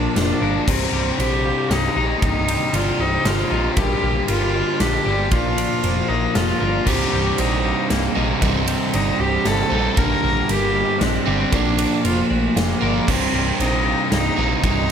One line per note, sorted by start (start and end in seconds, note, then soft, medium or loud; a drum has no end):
0.00 0.39 A#2 medium
0.00 0.42 A#2 medium
0.00 0.40 F3 medium
0.00 0.41 A#3 loud
0.00 0.71 A#3 medium
0.00 0.16 D4 loud
0.00 0.67 D4 medium
0.00 0.42 A#4 medium
0.15 0.32 F1 medium
0.15 0.69 D4 loud
0.15 0.67 F4 medium
0.15 snare medium
0.15 ride medium
0.41 0.58 G1 medium
0.41 0.66 A#2 medium
0.41 0.66 F3 medium
0.41 0.69 A#3 medium
0.41 0.71 A#4 medium
0.41 0.67 D5 medium
0.66 0.84 C1 medium
0.66 1.94 C2 medium
0.66 1.96 C2 medium
0.66 1.95 G2 medium
0.66 1.94 C3 medium
0.66 1.21 C4 medium
0.66 1.18 C5 medium
0.66 kick loud
0.66 crash loud
0.93 1.09 C1 medium
0.93 1.45 G3 medium
1.19 1.51 A#1 medium
1.19 2.48 C3 medium
1.19 1.73 G4 loud
1.19 1.45 C5 medium
1.19 ride medium
1.45 2.48 G3 medium
1.45 1.96 F5 medium
1.70 1.86 C1 medium
1.70 3.25 A#3 medium
1.70 2.22 D#4 loud
1.70 snare medium
1.70 ride medium
1.96 2.12 A#1 medium
1.96 2.20 C2 medium
1.96 2.21 G2 medium
1.96 2.20 C3 loud
1.96 3.25 D#4 medium
1.96 2.22 D#5 medium
2.22 2.55 C1 loud
2.22 3.49 C2 loud
2.22 3.51 C2 medium
2.22 3.50 G2 loud
2.22 3.49 C3 loud
2.22 2.76 D#4 loud
2.22 2.74 D#5 loud
2.22 kick loud
2.22 ride medium
2.48 2.99 G3 medium
2.48 ride medium
2.73 2.90 G1 loud
2.73 3.77 C3 medium
2.73 3.02 F4 loud
2.73 3.00 D5 loud
2.73 ride medium
2.99 3.16 C1 medium
2.99 3.77 G3 medium
2.99 3.28 D#4 loud
2.99 3.51 C5 medium
3.25 3.41 G1 loud
3.25 4.02 A#3 medium
3.25 3.77 F4 loud
3.25 snare medium
3.25 ride medium
3.50 3.67 A#1 medium
3.50 3.76 C2 medium
3.50 3.75 G2 medium
3.50 3.75 C3 medium
3.50 3.77 D#4 medium
3.50 3.77 D#5 medium
3.76 3.93 A#1 loud
3.76 5.04 G2 medium
3.76 5.06 G2 medium
3.76 5.05 D3 medium
3.76 5.04 G3 loud
3.76 4.25 G4 loud
3.76 4.28 A#4 loud
3.76 kick loud
3.76 ride medium
4.02 4.19 A#1 loud
4.02 4.54 A#3 medium
4.28 4.61 G1 loud
4.28 5.32 G3 medium
4.28 4.82 F4 loud
4.28 4.54 A#4 medium
4.28 ride medium
4.54 5.57 A#3 medium
4.54 5.06 D#5 medium
4.80 4.96 A#1 loud
4.80 5.32 D4 medium
4.80 5.33 G4 loud
4.80 snare medium
4.80 ride medium
5.05 5.31 G1 medium
5.05 5.30 G2 medium
5.05 5.31 D3 medium
5.05 5.30 G3 medium
5.05 5.32 G4 medium
5.05 5.30 D5 medium
5.31 5.64 A#1 loud
5.31 6.59 A#2 medium
5.31 6.61 A#2 medium
5.31 6.60 F3 loud
5.31 6.59 A#3 loud
5.31 6.10 F4 loud
5.31 5.83 D5 loud
5.31 kick loud
5.31 ride medium
5.58 6.08 D4 medium
5.58 ride medium
5.83 6.00 F1 loud
5.83 6.89 A#3 medium
5.83 6.09 C5 loud
5.83 ride medium
6.09 6.26 A#1 medium
6.09 6.87 D4 medium
6.09 6.36 D#4 loud
6.09 6.61 A#4 medium
6.35 6.52 F1 medium
6.35 6.89 F4 loud
6.35 6.87 F4 medium
6.35 snare medium
6.35 ride medium
6.60 6.78 G1 medium
6.60 6.85 A#2 medium
6.60 6.86 F3 medium
6.60 6.89 A#3 medium
6.60 6.89 A#4 medium
6.60 6.87 D5 medium
6.86 7.03 C1 loud
6.86 8.14 C2 loud
6.86 8.16 C2 medium
6.86 8.15 G2 loud
6.86 8.14 C3 loud
6.86 7.41 G4 loud
6.86 7.37 C5 loud
6.86 kick loud
6.86 crash loud
7.12 7.29 C1 medium
7.12 7.64 G3 medium
7.38 7.71 A#1 medium
7.38 8.68 C3 medium
7.38 7.92 D#4 loud
7.38 7.64 C5 medium
7.38 ride medium
7.64 8.67 G3 medium
7.64 8.16 F5 medium
7.90 8.07 C1 loud
7.90 9.46 A#3 medium
7.90 8.42 A#3 medium
7.90 snare medium
7.90 ride medium
8.15 8.33 A#1 medium
8.15 8.40 C2 medium
8.15 8.41 G2 medium
8.15 8.40 C3 medium
8.15 9.45 D#4 medium
8.15 8.41 D#5 medium
8.41 8.74 C1 loud
8.41 9.69 C2 medium
8.41 9.71 C2 medium
8.41 9.70 G2 loud
8.41 9.69 C3 loud
8.41 8.96 C4 loud
8.41 8.94 D#5 loud
8.41 kick loud
8.41 ride medium
8.68 9.19 G3 medium
8.68 ride medium
8.94 9.10 G1 loud
8.94 9.97 C3 medium
8.94 9.22 D#4 loud
8.94 9.20 D5 loud
8.94 ride medium
9.19 9.36 C1 loud
9.19 9.98 G3 medium
9.19 9.48 G4 loud
9.19 9.72 C5 medium
9.45 9.62 G1 loud
9.45 10.24 A#3 medium
9.45 10.00 A4 loud
9.45 snare medium
9.45 ride medium
9.70 9.88 A#1 medium
9.70 9.96 C2 medium
9.70 9.95 G2 medium
9.70 9.95 C3 medium
9.70 9.98 D#4 medium
9.70 9.98 D#5 medium
9.96 10.14 A#1 loud
9.96 11.25 G2 loud
9.96 11.27 G2 medium
9.96 11.26 D3 medium
9.96 11.25 G3 loud
9.96 10.48 A#4 loud
9.96 10.52 A#4 loud
9.96 kick loud
9.96 ride medium
10.23 10.40 A#1 loud
10.23 10.75 A#3 medium
10.49 10.82 G1 loud
10.49 11.53 G3 medium
10.49 11.03 G4 loud
10.49 10.75 A#4 loud
10.49 ride medium
10.75 11.78 A#3 medium
10.75 11.27 D#5 medium
11.01 11.17 A#1 loud
11.01 11.55 C4 loud
11.01 11.53 D4 medium
11.01 snare medium
11.01 ride medium
11.26 11.43 G1 medium
11.26 11.51 G2 medium
11.26 11.52 D3 medium
11.26 11.51 G3 medium
11.26 11.53 G4 medium
11.26 11.52 D5 medium
11.52 11.85 A#1 loud
11.52 12.80 A#2 medium
11.52 12.82 A#2 medium
11.52 12.81 F3 medium
11.52 12.81 A#3 loud
11.52 12.04 D4 loud
11.52 12.05 D5 loud
11.52 kick loud
11.52 ride medium
11.79 12.29 D4 medium
11.79 ride medium
12.04 12.21 F1 medium
12.04 13.11 A#3 medium
12.04 12.29 F4 loud
12.04 12.30 C5 loud
12.04 ride medium
12.30 12.47 A#1 loud
12.30 12.60 A3 loud
12.30 13.08 D4 medium
12.30 12.82 A#4 medium
12.56 12.73 F1 loud
12.56 13.11 A#3 loud
12.56 13.08 F4 medium
12.56 snare medium
12.56 ride medium
12.82 12.99 G1 medium
12.82 13.06 A#2 medium
12.82 13.07 F3 medium
12.82 13.10 A#3 medium
12.82 13.11 A#4 medium
12.82 13.08 D5 medium
13.07 13.24 C1 loud
13.07 14.35 C2 medium
13.07 14.38 C2 medium
13.07 14.36 G2 loud
13.07 14.36 C3 loud
13.07 13.63 C4 loud
13.07 13.59 C5 loud
13.07 kick loud
13.07 crash loud
13.33 13.50 C1 medium
13.33 13.85 G3 medium
13.59 13.92 A#1 loud
13.59 14.89 C3 medium
13.59 14.12 D#4 medium
13.59 13.86 C5 loud
13.59 ride medium
13.85 14.89 G3 medium
13.85 14.38 F5 medium
14.12 14.28 C1 loud
14.12 14.91 A#3 medium
14.12 14.60 D#4 loud
14.12 snare medium
14.12 ride medium
14.37 14.54 A#1 medium
14.37 14.62 C2 medium
14.37 14.62 G2 medium
14.37 14.62 C3 medium
14.37 14.91 D#4 medium
14.37 14.62 D#5 medium
14.63 14.91 C1 loud
14.63 14.91 C2 medium
14.63 14.91 G2 loud
14.63 14.91 C3 medium
14.63 14.91 D#4 loud
14.63 14.91 D#5 loud
14.63 kick loud
14.63 ride medium